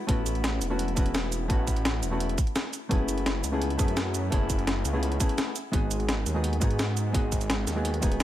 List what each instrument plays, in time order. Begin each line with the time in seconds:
0.07 detuned saw bass A1, hollow-body jazz guitar A3 B3 C#4 E4 F#4, kick, closed hi-hat
0.26 closed hi-hat, cabasa
0.35 closed hi-hat
0.44 snare, closed hi-hat
0.61 detuned saw bass E1, closed hi-hat, cabasa
0.70 hollow-body jazz guitar A3 B3 C#4 E4 F#4
0.79 closed hi-hat
0.88 closed hi-hat
0.95 detuned saw bass E1, hollow-body jazz guitar A3 B3 C#4 E4 F#4, kick, closed hi-hat, cabasa
1.06 closed hi-hat
1.15 snare, closed hi-hat, cabasa
1.32 closed hi-hat, cabasa
1.48 detuned saw bass A1, hollow-body jazz guitar A3 B3 C#4 E4 F#4, kick, closed hi-hat
1.67 kick, closed hi-hat, cabasa
1.76 closed hi-hat
1.85 snare, closed hi-hat
2.03 detuned saw bass E1, closed hi-hat, cabasa
2.11 hollow-body jazz guitar A3 B3 C#4 E4 F#4
2.20 closed hi-hat
2.29 closed hi-hat
2.38 kick, closed hi-hat, cabasa
2.47 closed hi-hat
2.56 snare, closed hi-hat, cabasa
2.73 closed hi-hat, cabasa
2.89 detuned saw bass F#1, hollow-body jazz guitar A3 B3 C#4 E4 G#4, kick, closed hi-hat
3.09 closed hi-hat, cabasa
3.18 closed hi-hat
3.26 snare, closed hi-hat
3.44 detuned saw bass C#2, closed hi-hat, cabasa
3.52 hollow-body jazz guitar A3 B3 C#4 E4 G#4
3.62 closed hi-hat
3.70 closed hi-hat
3.77 detuned saw bass F#2, hollow-body jazz guitar A3 B3 C#4 E4 G#4, kick, closed hi-hat, cabasa
3.88 closed hi-hat
3.97 snare, closed hi-hat, cabasa
4.14 closed hi-hat, cabasa
4.30 detuned saw bass F#1, hollow-body jazz guitar A3 B3 C#4 E4 G#4, kick, closed hi-hat
4.50 kick, closed hi-hat, cabasa
4.59 closed hi-hat
4.67 snare, closed hi-hat
4.85 detuned saw bass C#2, closed hi-hat, cabasa
4.93 hollow-body jazz guitar A3 B3 C#4 E4 G#4
5.03 closed hi-hat
5.12 closed hi-hat
5.20 hollow-body jazz guitar A3 B3 C#4 E4 G#4, kick, closed hi-hat, cabasa
5.29 closed hi-hat
5.38 snare, closed hi-hat, cabasa
5.56 closed hi-hat, cabasa
5.72 detuned saw bass G#1, hollow-body jazz guitar G#3 B3 D#4 F#4 G#4, kick, closed hi-hat
5.91 closed hi-hat, cabasa
6.00 closed hi-hat
6.09 snare, closed hi-hat
6.26 detuned saw bass D#2, closed hi-hat, cabasa
6.34 hollow-body jazz guitar G#3 B3 D#4 F#4 G#4
6.44 closed hi-hat
6.53 closed hi-hat
6.60 detuned saw bass G#2, hollow-body jazz guitar G#3 B3 D#4 F#4 G#4, kick, closed hi-hat, cabasa
6.71 closed hi-hat
6.79 snare, closed hi-hat, cabasa
6.97 closed hi-hat, cabasa
7.13 detuned saw bass G#1, hollow-body jazz guitar G#3 B3 D#4 F#4 G#4, kick, closed hi-hat
7.32 kick, closed hi-hat, cabasa
7.41 closed hi-hat, cabasa
7.50 snare, closed hi-hat
7.67 detuned saw bass D#2, snare, closed hi-hat, cabasa
7.75 hollow-body jazz guitar G#3 B3 D#4 F#4 G#4
7.85 closed hi-hat
7.94 closed hi-hat
8.01 detuned saw bass D#1, hollow-body jazz guitar G#3 B3 D#4 F#4 G#4, kick, closed hi-hat, cabasa
8.12 closed hi-hat